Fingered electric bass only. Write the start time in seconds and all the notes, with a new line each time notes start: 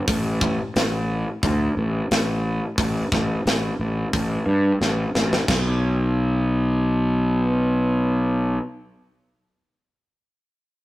0.08 A1
0.76 A1
1.44 D2
1.77 A1
2.11 A1
2.78 A1
3.12 A1
3.45 A1
3.79 A1
4.14 A1
4.46 G2
4.81 A1
5.15 A1
5.48 B1